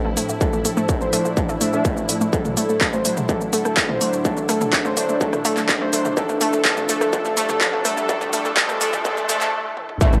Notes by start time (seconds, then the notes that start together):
Already playing: A2 F3 A3 D4 E4 C5 G5 A5
0.05 A3
0.17 A3, open hi-hat, shaker
0.29 A3, shaker
0.41 F3 A3 D4 A4 D5, kick, shaker
0.53 A3, shaker
0.65 A3 A4, open hi-hat, shaker
0.77 A3, shaker
0.89 A3, kick, shaker
1.01 A3 C5, shaker
1.13 F3 A3 D4, open hi-hat, shaker
1.25 A3, shaker
1.37 A3, kick, shaker
1.49 A3, shaker
1.61 F3 A3 D4 E5, open hi-hat, shaker
1.73 F3 A3 D4, shaker
1.85 A3, kick, shaker
1.97 A3, shaker
2.09 A3, open hi-hat, shaker
2.21 A3, shaker
2.33 F#3 A3 D4 A4 E5 F#5, kick, riser, shaker
2.45 A3, mid tom, shaker
2.57 A3 A4, open hi-hat, shaker
2.69 A3, shaker
2.81 A3, kick, cross-stick, clap, shaker
2.93 A3 C5, shaker
3.05 F#3 A3 D4, open hi-hat, shaker
3.17 A3, mid tom, shaker
3.29 F#3 A3 D4 A4, kick, shaker
3.41 A3, shaker
3.53 A3 A4, open hi-hat, shaker
3.65 A3, cross-stick, shaker
3.77 A3, kick, clap, shaker
3.89 A3 C5, mid tom
4.01 F#3 A3 D4, open hi-hat, shaker
4.13 A3, shaker
4.25 F#3 A3 D4 A4, kick, shaker
4.37 A3, shaker
4.49 A3 A4, cross-stick, open hi-hat, shaker
4.61 A3, mid tom, shaker
4.73 A3, kick, clap, shaker
4.85 A3 C5, shaker
4.97 F#3 A3 D4, open hi-hat, shaker
5.09 A3, shaker
5.21 F#3 A3 D4 A4, kick, shaker
5.33 A3, cross-stick, mid tom, shaker
5.45 A3 A4, open hi-hat, shaker
5.57 A3, clap, shaker
5.69 A3, kick, clap, shaker
5.81 A3 C5
5.93 F#3 A3 D4, open hi-hat, shaker
6.05 A3, mid tom, shaker
6.17 F3 G3 A3 D4 A4, kick, cross-stick, shaker
6.29 A3, shaker
6.41 A3 A4, open hi-hat, shaker
6.53 A3, shaker
6.65 F3 A3 D4 A4, kick, clap, shaker
6.77 A3, mid tom, shaker
6.89 A3 A4, open hi-hat, shaker
7.01 A3, cross-stick, shaker
7.13 F3 A3 D4 A4, kick, shaker
7.25 A3, shaker
7.37 A3 A4, open hi-hat, shaker
7.49 A3, mid tom, shaker
7.61 F3 A3 D4 A4, kick, clap, shaker
7.73 A3
7.85 A3 A4, cross-stick, open hi-hat, shaker
7.97 A3, shaker
8.09 F3 A3 D4 A4, kick, shaker
8.21 A3, mid tom, shaker
8.33 F3 A3 D4 A4, open hi-hat, shaker
8.45 A3, shaker
8.57 F3 A3 D4 A4, kick, clap, shaker
8.69 A3, cross-stick, shaker
8.81 F3 A3 D4 A4, open hi-hat, shaker
8.93 A3, mid tom, shaker
9.05 F3 A3 D4 A4, kick, shaker
9.17 A3, shaker
9.29 F3 A3 D4 A4, open hi-hat, shaker
9.41 A3, clap, shaker
9.77 high tom
9.89 mid tom
10.01 G3 A3 C4 E4, kick, impact, shaker
10.13 A1 A3, mid tom, shaker